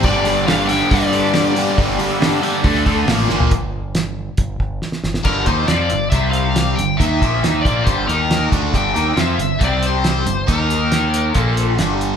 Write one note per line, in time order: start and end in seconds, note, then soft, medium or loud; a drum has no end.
0.03 0.82 G1 loud
0.03 0.26 G2 loud
0.03 0.27 D3 loud
0.03 0.27 G3 loud
0.03 0.28 A#3 medium
0.03 0.28 D4 medium
0.03 0.28 G4 loud
0.03 0.47 D5 medium
0.03 kick loud
0.03 open hi-hat medium
0.25 0.47 G2 medium
0.25 0.48 D3 medium
0.25 0.48 G3 medium
0.25 0.48 A#3 medium
0.25 0.49 D4 medium
0.25 open hi-hat medium
0.29 0.50 G4 medium
0.47 0.69 G2 medium
0.47 0.69 D3 medium
0.47 0.70 G3 loud
0.47 0.70 A#3 medium
0.47 0.70 D4 loud
0.47 0.71 G4 medium
0.47 0.70 F5 medium
0.47 snare loud
0.47 open hi-hat medium
0.67 0.90 G2 medium
0.67 0.91 D3 medium
0.67 0.92 G3 medium
0.67 0.92 A#3 medium
0.67 0.91 G5 loud
0.67 open hi-hat medium
0.71 0.92 D4 medium
0.71 0.92 G4 medium
0.89 1.69 G2 medium
0.89 1.11 G2 loud
0.89 1.12 D3 medium
0.89 1.12 G3 medium
0.89 1.13 A#3 loud
0.89 1.13 D4 medium
0.89 3.03 D5 medium
0.89 kick loud
0.89 open hi-hat medium
0.94 1.14 G4 loud
1.12 1.32 G2 medium
1.12 1.32 D3 medium
1.12 1.33 G3 medium
1.12 1.34 A#3 medium
1.12 1.34 D4 medium
1.12 1.34 G4 loud
1.12 open hi-hat medium
1.33 1.54 G2 medium
1.33 1.55 D3 medium
1.33 1.56 G3 medium
1.33 1.56 A#3 medium
1.33 1.56 D4 medium
1.33 1.56 G4 medium
1.33 snare loud
1.33 open hi-hat medium
1.55 1.76 G2 medium
1.55 1.76 D3 medium
1.55 1.77 G3 medium
1.55 1.77 A#3 medium
1.55 1.78 D4 medium
1.55 1.78 G4 medium
1.55 open hi-hat medium
1.77 1.97 G1 medium
1.77 1.98 G2 medium
1.77 1.98 D3 medium
1.77 1.99 G3 medium
1.77 2.00 A#3 medium
1.77 1.99 D4 loud
1.77 2.01 G4 loud
1.77 kick loud
1.77 open hi-hat medium
1.99 2.18 G2 medium
1.99 2.19 D3 medium
1.99 2.19 G3 medium
1.99 2.20 A#3 medium
1.99 2.20 D4 medium
1.99 2.21 G4 medium
1.99 open hi-hat medium
2.19 2.40 G2 medium
2.19 2.40 D3 medium
2.19 2.41 G3 medium
2.19 2.41 A#3 medium
2.19 2.41 D4 loud
2.19 2.42 G4 medium
2.19 snare loud
2.19 open hi-hat medium
2.41 2.62 G2 medium
2.41 2.62 D3 medium
2.41 2.63 G3 medium
2.41 2.63 A#3 medium
2.41 2.63 D4 medium
2.41 2.63 G4 medium
2.41 open hi-hat medium
2.64 3.03 D2 loud
2.64 2.85 D3 medium
2.64 2.85 A3 medium
2.64 2.87 D4 loud
2.64 2.87 A4 medium
2.64 kick loud
2.64 open hi-hat medium
2.76 snare soft
2.86 3.06 D3 medium
2.86 3.07 A3 medium
2.86 3.07 D4 medium
2.86 3.07 A4 medium
2.86 kick medium
2.86 open hi-hat medium
3.08 3.27 A1 medium
3.08 3.29 A#2 medium
3.08 3.29 F3 medium
3.08 3.30 A#3 medium
3.08 3.30 F4 medium
3.08 snare loud
3.08 open hi-hat medium
3.29 3.50 G1 medium
3.29 3.50 A#2 medium
3.29 3.50 F3 medium
3.29 3.51 A#3 medium
3.29 3.51 F4 medium
3.29 snare medium
3.40 floor tom medium
3.51 4.29 G1 medium
3.51 kick loud
3.51 closed hi-hat medium
3.95 snare loud
3.95 closed hi-hat medium
4.37 4.57 G1 medium
4.37 kick loud
4.37 closed hi-hat medium
4.60 4.79 G1 medium
4.60 kick medium
4.82 snare soft
4.92 snare medium
5.04 5.23 G1 medium
5.04 snare medium
5.14 snare medium
5.25 5.45 G1 medium
5.25 5.46 G2 medium
5.25 5.46 D3 medium
5.25 5.47 G3 medium
5.25 5.45 A#4 medium
5.25 kick medium
5.25 crash medium
5.46 5.67 D#2 medium
5.46 5.68 D#3 medium
5.46 5.68 A#3 medium
5.46 5.68 D#4 medium
5.46 5.69 C5 medium
5.46 kick medium
5.46 closed hi-hat medium
5.67 5.89 F2 medium
5.67 5.90 F3 medium
5.67 5.90 C4 medium
5.67 5.90 F4 medium
5.67 6.10 D5 medium
5.67 snare loud
5.67 closed hi-hat medium
5.90 6.11 G1 medium
5.90 6.08 G2 medium
5.90 6.08 D3 medium
5.90 closed hi-hat medium
6.10 6.73 C2 medium
6.10 6.77 C3 medium
6.10 6.77 G3 medium
6.10 6.78 C4 medium
6.10 6.31 E5 medium
6.10 kick medium
6.10 closed hi-hat medium
6.31 6.77 F5 medium
6.31 closed hi-hat medium
6.56 snare loud
6.56 closed hi-hat medium
6.75 6.98 G1 medium
6.75 6.95 G2 medium
6.75 6.96 D3 medium
6.75 6.99 G5 medium
6.75 closed hi-hat medium
6.97 7.20 D#2 medium
6.97 7.21 D#3 medium
6.97 7.21 A#3 medium
6.97 7.60 E5 medium
6.97 kick medium
6.97 closed hi-hat medium
7.01 7.21 D#4 medium
7.22 7.42 A#1 medium
7.22 7.43 A#2 medium
7.22 7.43 F3 medium
7.22 7.43 A#3 medium
7.22 kick medium
7.22 closed hi-hat medium
7.43 7.63 D#2 medium
7.43 7.65 D#3 medium
7.43 7.65 A#3 medium
7.43 7.65 D#4 medium
7.43 snare medium
7.43 closed hi-hat medium
7.62 7.85 A#1 medium
7.62 7.86 A#2 medium
7.62 7.86 D5 medium
7.62 kick medium
7.66 7.86 F3 medium
7.66 7.87 A#3 medium
7.66 closed hi-hat medium
7.84 8.07 G1 medium
7.84 8.08 G2 medium
7.84 8.07 C5 medium
7.84 kick loud
7.84 closed hi-hat medium
7.88 8.07 D3 medium
7.88 8.08 G3 medium
8.07 8.49 D#2 medium
8.07 8.51 D#3 medium
8.07 8.51 A#3 medium
8.07 8.52 D#4 medium
8.07 8.48 A#4 medium
8.07 closed hi-hat medium
8.31 snare loud
8.31 closed hi-hat medium
8.52 8.72 D2 medium
8.52 8.73 D3 medium
8.52 8.73 A3 medium
8.52 8.74 D4 medium
8.52 kick medium
8.52 closed hi-hat medium
8.73 8.94 G1 medium
8.73 8.94 G2 medium
8.73 8.94 D3 medium
8.73 8.94 G3 medium
8.73 9.19 G5 medium
8.73 kick medium
8.73 closed hi-hat medium
8.94 9.16 D#2 medium
8.94 9.15 D#3 medium
8.94 9.16 A#3 medium
8.94 9.16 D#4 medium
8.94 closed hi-hat soft
9.15 9.37 F2 medium
9.15 9.37 F3 medium
9.15 9.38 C4 medium
9.15 9.38 F4 medium
9.15 snare loud
9.15 closed hi-hat medium
9.19 9.63 E5 medium
9.38 9.59 G1 medium
9.38 9.56 G2 medium
9.38 9.56 D3 medium
9.38 closed hi-hat medium
9.60 10.22 C2 medium
9.60 10.25 C3 medium
9.60 10.25 G3 medium
9.60 10.25 C4 medium
9.60 kick medium
9.60 closed hi-hat medium
9.64 9.85 D5 medium
9.83 10.46 C5 medium
9.83 closed hi-hat medium
10.04 snare loud
10.04 closed hi-hat medium
10.26 10.46 G1 medium
10.26 10.43 G2 medium
10.26 10.44 D3 medium
10.26 closed hi-hat medium
10.47 11.31 D#2 medium
10.47 11.34 D#3 medium
10.47 11.34 A#3 medium
10.47 11.34 D#4 medium
10.47 kick medium
10.47 closed hi-hat medium
10.52 11.33 A#4 medium
10.70 closed hi-hat medium
10.92 snare medium
10.92 closed hi-hat medium
11.14 closed hi-hat medium
11.33 11.76 A#1 medium
11.33 11.78 A#2 medium
11.33 11.78 F3 medium
11.33 11.78 A#3 medium
11.33 11.77 A4 medium
11.33 kick medium
11.33 closed hi-hat medium
11.57 closed hi-hat medium
11.79 12.16 G1 medium
11.79 12.16 G2 medium
11.79 12.16 D3 medium
11.79 12.16 G3 medium
11.79 snare medium
11.79 closed hi-hat medium
12.01 closed hi-hat medium